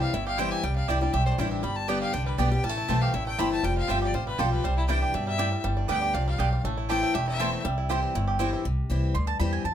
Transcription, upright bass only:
0, 0, Header, 1, 2, 480
1, 0, Start_track
1, 0, Key_signature, 0, "major"
1, 0, Tempo, 250417
1, 1221, Time_signature, 4, 2, 24, 8
1, 18672, End_track
2, 0, Start_track
2, 0, Title_t, "Upright bass"
2, 0, Program_c, 0, 32
2, 251, Note_on_c, 0, 31, 84
2, 986, Note_off_c, 0, 31, 0
2, 1215, Note_on_c, 0, 36, 84
2, 1583, Note_off_c, 0, 36, 0
2, 1692, Note_on_c, 0, 36, 83
2, 2104, Note_off_c, 0, 36, 0
2, 2177, Note_on_c, 0, 35, 92
2, 2586, Note_off_c, 0, 35, 0
2, 2650, Note_on_c, 0, 33, 97
2, 3062, Note_off_c, 0, 33, 0
2, 3136, Note_on_c, 0, 31, 87
2, 3869, Note_off_c, 0, 31, 0
2, 4099, Note_on_c, 0, 36, 82
2, 4507, Note_off_c, 0, 36, 0
2, 4569, Note_on_c, 0, 35, 93
2, 4981, Note_off_c, 0, 35, 0
2, 5061, Note_on_c, 0, 33, 88
2, 5426, Note_off_c, 0, 33, 0
2, 5536, Note_on_c, 0, 35, 93
2, 5946, Note_off_c, 0, 35, 0
2, 6009, Note_on_c, 0, 33, 90
2, 6421, Note_off_c, 0, 33, 0
2, 6491, Note_on_c, 0, 31, 85
2, 6903, Note_off_c, 0, 31, 0
2, 6960, Note_on_c, 0, 29, 84
2, 7333, Note_off_c, 0, 29, 0
2, 7453, Note_on_c, 0, 31, 84
2, 7863, Note_off_c, 0, 31, 0
2, 7925, Note_on_c, 0, 33, 83
2, 8339, Note_off_c, 0, 33, 0
2, 8409, Note_on_c, 0, 35, 92
2, 8821, Note_off_c, 0, 35, 0
2, 8891, Note_on_c, 0, 36, 84
2, 9626, Note_off_c, 0, 36, 0
2, 9852, Note_on_c, 0, 43, 90
2, 10587, Note_off_c, 0, 43, 0
2, 10812, Note_on_c, 0, 31, 83
2, 11181, Note_off_c, 0, 31, 0
2, 11294, Note_on_c, 0, 38, 92
2, 11704, Note_off_c, 0, 38, 0
2, 11770, Note_on_c, 0, 36, 85
2, 12182, Note_off_c, 0, 36, 0
2, 12246, Note_on_c, 0, 35, 84
2, 12660, Note_off_c, 0, 35, 0
2, 12732, Note_on_c, 0, 33, 85
2, 13467, Note_off_c, 0, 33, 0
2, 13697, Note_on_c, 0, 28, 86
2, 14430, Note_off_c, 0, 28, 0
2, 14659, Note_on_c, 0, 36, 88
2, 15392, Note_off_c, 0, 36, 0
2, 15618, Note_on_c, 0, 31, 95
2, 16351, Note_off_c, 0, 31, 0
2, 16578, Note_on_c, 0, 36, 85
2, 16946, Note_off_c, 0, 36, 0
2, 17052, Note_on_c, 0, 36, 91
2, 17465, Note_off_c, 0, 36, 0
2, 17532, Note_on_c, 0, 38, 83
2, 17946, Note_off_c, 0, 38, 0
2, 18012, Note_on_c, 0, 40, 90
2, 18426, Note_off_c, 0, 40, 0
2, 18484, Note_on_c, 0, 41, 92
2, 18672, Note_off_c, 0, 41, 0
2, 18672, End_track
0, 0, End_of_file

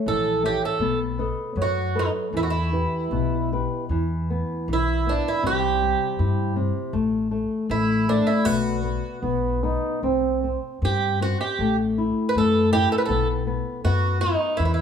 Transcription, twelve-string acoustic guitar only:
0, 0, Header, 1, 2, 480
1, 0, Start_track
1, 0, Key_signature, 1, "minor"
1, 0, Tempo, 758534
1, 508, Time_signature, 2, 2, 24, 8
1, 1476, Tempo, 784314
1, 2916, Tempo, 754717
1, 5316, Tempo, 782269
1, 7236, Tempo, 750939
1, 9297, End_track
2, 0, Start_track
2, 0, Title_t, "Twelve-string acoustic guitar"
2, 0, Program_c, 0, 25
2, 50, Note_on_c, 0, 69, 76
2, 285, Note_off_c, 0, 69, 0
2, 288, Note_on_c, 0, 67, 75
2, 401, Note_off_c, 0, 67, 0
2, 412, Note_on_c, 0, 69, 68
2, 623, Note_off_c, 0, 69, 0
2, 1023, Note_on_c, 0, 66, 73
2, 1257, Note_off_c, 0, 66, 0
2, 1261, Note_on_c, 0, 63, 73
2, 1323, Note_off_c, 0, 63, 0
2, 1498, Note_on_c, 0, 64, 67
2, 1527, Note_off_c, 0, 64, 0
2, 1535, Note_on_c, 0, 66, 55
2, 1569, Note_off_c, 0, 66, 0
2, 1580, Note_on_c, 0, 64, 63
2, 2185, Note_off_c, 0, 64, 0
2, 2944, Note_on_c, 0, 64, 62
2, 3175, Note_on_c, 0, 62, 68
2, 3179, Note_off_c, 0, 64, 0
2, 3290, Note_off_c, 0, 62, 0
2, 3295, Note_on_c, 0, 64, 67
2, 3410, Note_off_c, 0, 64, 0
2, 3413, Note_on_c, 0, 67, 81
2, 4095, Note_off_c, 0, 67, 0
2, 4839, Note_on_c, 0, 64, 65
2, 5082, Note_on_c, 0, 62, 81
2, 5085, Note_off_c, 0, 64, 0
2, 5194, Note_on_c, 0, 64, 72
2, 5202, Note_off_c, 0, 62, 0
2, 5310, Note_off_c, 0, 64, 0
2, 5310, Note_on_c, 0, 66, 80
2, 6030, Note_off_c, 0, 66, 0
2, 6782, Note_on_c, 0, 67, 69
2, 6993, Note_off_c, 0, 67, 0
2, 7013, Note_on_c, 0, 66, 74
2, 7116, Note_off_c, 0, 66, 0
2, 7125, Note_on_c, 0, 67, 68
2, 7345, Note_off_c, 0, 67, 0
2, 7684, Note_on_c, 0, 71, 67
2, 7724, Note_off_c, 0, 71, 0
2, 7741, Note_on_c, 0, 69, 78
2, 7962, Note_off_c, 0, 69, 0
2, 7964, Note_on_c, 0, 67, 90
2, 8084, Note_off_c, 0, 67, 0
2, 8087, Note_on_c, 0, 69, 69
2, 8104, Note_off_c, 0, 69, 0
2, 8126, Note_on_c, 0, 71, 57
2, 8166, Note_off_c, 0, 71, 0
2, 8174, Note_on_c, 0, 69, 73
2, 8311, Note_off_c, 0, 69, 0
2, 8679, Note_on_c, 0, 66, 73
2, 8900, Note_off_c, 0, 66, 0
2, 8911, Note_on_c, 0, 63, 78
2, 9137, Note_off_c, 0, 63, 0
2, 9141, Note_on_c, 0, 64, 69
2, 9187, Note_off_c, 0, 64, 0
2, 9195, Note_on_c, 0, 64, 53
2, 9241, Note_off_c, 0, 64, 0
2, 9250, Note_on_c, 0, 64, 55
2, 9290, Note_off_c, 0, 64, 0
2, 9297, End_track
0, 0, End_of_file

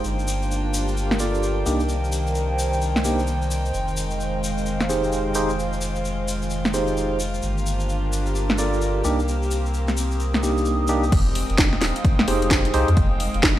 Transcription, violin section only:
0, 0, Header, 1, 2, 480
1, 0, Start_track
1, 0, Tempo, 461538
1, 48, Time_signature, 4, 2, 24, 8
1, 14135, End_track
2, 0, Start_track
2, 0, Title_t, "Violin section"
2, 0, Program_c, 0, 48
2, 0, Note_on_c, 0, 79, 77
2, 47, Note_on_c, 0, 65, 66
2, 48, Note_on_c, 0, 58, 72
2, 48, Note_on_c, 0, 62, 69
2, 1711, Note_off_c, 0, 58, 0
2, 1711, Note_off_c, 0, 65, 0
2, 1726, Note_on_c, 0, 63, 66
2, 1727, Note_on_c, 0, 58, 69
2, 3850, Note_off_c, 0, 62, 0
2, 3866, Note_off_c, 0, 58, 0
2, 3889, Note_on_c, 0, 56, 73
2, 3889, Note_on_c, 0, 60, 65
2, 5766, Note_off_c, 0, 63, 0
2, 5807, Note_on_c, 0, 65, 66
2, 7686, Note_off_c, 0, 79, 0
2, 7690, Note_off_c, 0, 56, 0
2, 7690, Note_off_c, 0, 60, 0
2, 7728, Note_on_c, 0, 58, 73
2, 7730, Note_on_c, 0, 67, 82
2, 9372, Note_off_c, 0, 65, 0
2, 9409, Note_on_c, 0, 60, 66
2, 11529, Note_off_c, 0, 58, 0
2, 11531, Note_off_c, 0, 67, 0
2, 11547, Note_off_c, 0, 60, 0
2, 11566, Note_on_c, 0, 56, 79
2, 11566, Note_on_c, 0, 60, 73
2, 11566, Note_on_c, 0, 63, 72
2, 11566, Note_on_c, 0, 79, 88
2, 14135, Note_off_c, 0, 56, 0
2, 14135, Note_off_c, 0, 60, 0
2, 14135, Note_off_c, 0, 63, 0
2, 14135, Note_off_c, 0, 79, 0
2, 14135, End_track
0, 0, End_of_file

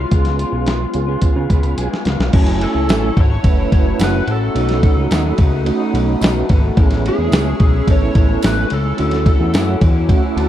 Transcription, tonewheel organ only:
0, 0, Header, 1, 2, 480
1, 0, Start_track
1, 0, Key_signature, 3, "minor"
1, 0, Tempo, 554017
1, 102, Time_signature, 4, 2, 24, 8
1, 9085, End_track
2, 0, Start_track
2, 0, Title_t, "Tonewheel organ"
2, 0, Program_c, 0, 16
2, 89, Note_on_c, 0, 59, 62
2, 95, Note_on_c, 0, 61, 53
2, 105, Note_on_c, 0, 65, 60
2, 113, Note_on_c, 0, 68, 65
2, 613, Note_off_c, 0, 59, 0
2, 616, Note_off_c, 0, 61, 0
2, 621, Note_off_c, 0, 65, 0
2, 625, Note_off_c, 0, 68, 0
2, 809, Note_on_c, 0, 59, 72
2, 817, Note_on_c, 0, 61, 68
2, 825, Note_on_c, 0, 65, 69
2, 831, Note_on_c, 0, 68, 82
2, 903, Note_off_c, 0, 59, 0
2, 907, Note_off_c, 0, 61, 0
2, 911, Note_off_c, 0, 65, 0
2, 914, Note_off_c, 0, 68, 0
2, 922, Note_on_c, 0, 59, 81
2, 926, Note_on_c, 0, 61, 75
2, 938, Note_on_c, 0, 65, 69
2, 944, Note_on_c, 0, 68, 83
2, 1294, Note_on_c, 0, 83, 65
2, 1523, Note_off_c, 0, 83, 0
2, 1541, Note_on_c, 0, 80, 69
2, 1622, Note_off_c, 0, 59, 0
2, 1624, Note_off_c, 0, 61, 0
2, 1630, Note_off_c, 0, 65, 0
2, 1633, Note_off_c, 0, 68, 0
2, 1766, Note_off_c, 0, 80, 0
2, 1787, Note_on_c, 0, 77, 65
2, 2010, Note_off_c, 0, 77, 0
2, 2017, Note_on_c, 0, 57, 83
2, 2027, Note_on_c, 0, 61, 78
2, 2029, Note_on_c, 0, 64, 77
2, 2039, Note_on_c, 0, 80, 91
2, 2710, Note_off_c, 0, 57, 0
2, 2715, Note_off_c, 0, 61, 0
2, 2716, Note_off_c, 0, 64, 0
2, 2721, Note_off_c, 0, 80, 0
2, 2971, Note_on_c, 0, 57, 77
2, 2975, Note_on_c, 0, 61, 72
2, 2985, Note_on_c, 0, 64, 70
2, 2994, Note_on_c, 0, 71, 88
2, 3667, Note_off_c, 0, 57, 0
2, 3669, Note_off_c, 0, 61, 0
2, 3674, Note_off_c, 0, 64, 0
2, 3678, Note_off_c, 0, 71, 0
2, 3932, Note_on_c, 0, 57, 75
2, 3936, Note_on_c, 0, 61, 61
2, 3947, Note_on_c, 0, 63, 65
2, 3950, Note_on_c, 0, 66, 77
2, 4627, Note_off_c, 0, 57, 0
2, 4630, Note_off_c, 0, 61, 0
2, 4635, Note_off_c, 0, 63, 0
2, 4637, Note_off_c, 0, 66, 0
2, 4892, Note_on_c, 0, 57, 95
2, 4903, Note_on_c, 0, 61, 84
2, 4908, Note_on_c, 0, 63, 85
2, 4915, Note_on_c, 0, 66, 100
2, 5380, Note_on_c, 0, 75, 67
2, 5497, Note_off_c, 0, 75, 0
2, 5508, Note_on_c, 0, 71, 72
2, 5587, Note_off_c, 0, 57, 0
2, 5593, Note_off_c, 0, 61, 0
2, 5595, Note_off_c, 0, 63, 0
2, 5599, Note_off_c, 0, 66, 0
2, 5735, Note_off_c, 0, 71, 0
2, 5752, Note_on_c, 0, 69, 67
2, 5853, Note_on_c, 0, 59, 81
2, 5861, Note_on_c, 0, 61, 80
2, 5870, Note_on_c, 0, 64, 75
2, 5873, Note_on_c, 0, 68, 85
2, 5977, Note_off_c, 0, 69, 0
2, 6548, Note_off_c, 0, 59, 0
2, 6552, Note_off_c, 0, 61, 0
2, 6556, Note_off_c, 0, 64, 0
2, 6558, Note_off_c, 0, 68, 0
2, 6814, Note_on_c, 0, 59, 77
2, 6822, Note_on_c, 0, 61, 74
2, 6828, Note_on_c, 0, 64, 71
2, 6838, Note_on_c, 0, 69, 91
2, 7508, Note_off_c, 0, 59, 0
2, 7512, Note_off_c, 0, 61, 0
2, 7515, Note_off_c, 0, 64, 0
2, 7520, Note_off_c, 0, 69, 0
2, 7771, Note_on_c, 0, 57, 66
2, 7779, Note_on_c, 0, 61, 62
2, 7785, Note_on_c, 0, 64, 65
2, 7793, Note_on_c, 0, 66, 75
2, 8466, Note_off_c, 0, 57, 0
2, 8470, Note_off_c, 0, 61, 0
2, 8474, Note_off_c, 0, 64, 0
2, 8477, Note_off_c, 0, 66, 0
2, 8727, Note_on_c, 0, 57, 91
2, 8737, Note_on_c, 0, 61, 85
2, 8739, Note_on_c, 0, 64, 82
2, 8749, Note_on_c, 0, 66, 106
2, 8979, Note_on_c, 0, 81, 70
2, 9085, Note_off_c, 0, 57, 0
2, 9085, Note_off_c, 0, 61, 0
2, 9085, Note_off_c, 0, 64, 0
2, 9085, Note_off_c, 0, 66, 0
2, 9085, Note_off_c, 0, 81, 0
2, 9085, End_track
0, 0, End_of_file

